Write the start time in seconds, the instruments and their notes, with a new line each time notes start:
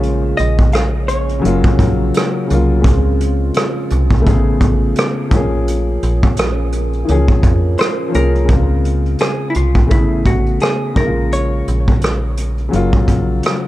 Already playing: fm bass A#1, upright piano C#3 G#3 A#3 F4, ambient pad A#3 C#4 G#4, hollow-body jazz guitar C#5
0.03 closed hi-hat
0.37 fm bass A#1, hollow-body jazz guitar D#5, closed hi-hat
0.59 kick, closed hi-hat
0.72 hollow-body jazz guitar F5, cross-stick, closed hi-hat
1.08 hollow-body jazz guitar C#5, closed hi-hat
1.29 closed hi-hat
1.39 upright piano C#3 F#3, ambient pad F#3 F4 A#4
1.44 fm bass F#1, upright piano A#3 F4, closed hi-hat
1.64 kick
1.79 fm bass A#1, kick, closed hi-hat
2.14 cross-stick, closed hi-hat
2.47 upright piano C#3 F#3, closed hi-hat
2.51 fm bass C2, upright piano A#3 F4
2.80 upright piano C#3 G#3
2.84 fm bass C#2, ambient pad F3 G#3 C4, upright piano C4 F4, kick, closed hi-hat
3.21 closed hi-hat
3.54 cross-stick, closed hi-hat
3.90 fm bass C2, closed hi-hat
4.11 kick
4.20 upright piano C#3 A3
4.24 fm bass A1, ambient pad A3 C#4 G#4, upright piano B3 G#4, kick, closed hi-hat
4.61 fm bass A1, kick, closed hi-hat
4.96 cross-stick, closed hi-hat
5.29 fm bass A#1, upright piano F3 A#3, ambient pad A#3 C#4 G#4, kick, closed hi-hat
5.34 upright piano C#4 G#4
5.68 closed hi-hat
6.03 fm bass A#1, closed hi-hat
6.23 kick
6.36 cross-stick, closed hi-hat
6.72 closed hi-hat
6.93 closed hi-hat
7.05 upright piano E3 A#3, ambient pad G#3 A#3 C#4 F4, closed hi-hat
7.09 fm bass C#2, upright piano F3 C#4 G#4
7.28 fm bass F2, kick
7.43 fm bass F2, kick, closed hi-hat
7.78 hollow-body jazz guitar C5, cross-stick, closed hi-hat
8.09 upright piano F3 A#3
8.13 fm bass C2, upright piano C#4 G#4, hollow-body jazz guitar A#4, closed hi-hat
8.35 closed hi-hat
8.45 upright piano C#3 G#3
8.49 fm bass C#2, upright piano C4 F4, kick, closed hi-hat
8.85 closed hi-hat
9.06 closed hi-hat
9.19 hollow-body jazz guitar G#4, cross-stick, closed hi-hat
9.50 hollow-body jazz guitar E4
9.54 fm bass C2, hollow-body jazz guitar F4, closed hi-hat
9.75 kick
9.87 upright piano C#3 A3, closed hi-hat
9.91 fm bass A1, upright piano B3 G#4, hollow-body jazz guitar E4, kick
10.25 fm bass A1, hollow-body jazz guitar F#4, kick, closed hi-hat
10.46 closed hi-hat
10.60 hollow-body jazz guitar G#4, cross-stick, closed hi-hat
10.93 fm bass A#1, upright piano C#3 G#3, kick, closed hi-hat
10.97 upright piano A#3 E4, hollow-body jazz guitar A#4
11.06 upright piano F4
11.32 hollow-body jazz guitar C#5, closed hi-hat
11.68 fm bass A#1, closed hi-hat
11.88 kick
12.01 cross-stick, closed hi-hat
12.37 closed hi-hat
12.58 closed hi-hat
12.69 upright piano C#3 F#3
12.73 fm bass F#1, upright piano A#3 F4, closed hi-hat
12.93 kick
13.08 fm bass A#1, kick, closed hi-hat
13.43 cross-stick, closed hi-hat